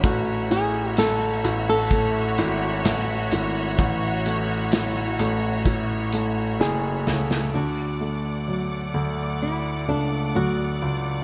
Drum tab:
HH |x-x-x-x-x-x-x-x-|x-x-x-x-x-x-----|----------------|
SD |----o-------o---|----o-------o-oo|----------------|
BD |o-------o-------|o-------o-------|----------------|